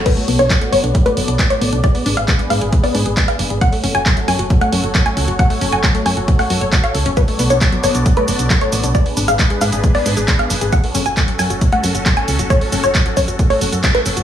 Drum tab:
CC |x---------------|----------------|----------------|----------------|
HH |xooxxxoxxxoxxxox|xooxxxoxxooxxxox|xooxxxoxxxoxxxox|xooxxxoxxooxxxox|
SH |----------------|----------------|----------------|----------------|
CP |----x-------x---|----x-------x---|----x-------x---|----x-------x---|
BD |o---o---o---o---|o---o---o---o---|o---o---o---o---|o---o---o---o---|

CC |----------------|----------------|----------------|----------------|
HH |xooxxxoxxxoxxxox|xooxxxoxxooxxxox|xooxxxoxxxoxxxox|xooxxxoxxooxxxox|
SH |x-xxx-xxx-xxx-xx|x-xxx-xxx-xxx-xx|x-xxx-xxx-xxx-xx|x-xxx-xxx-xxx-xx|
CP |----x-------x---|----x-------x---|----x-------x---|----x-------x---|
BD |o---o---o---o---|o---o---o---o---|o---o---o---o---|o---o-o-o---o---|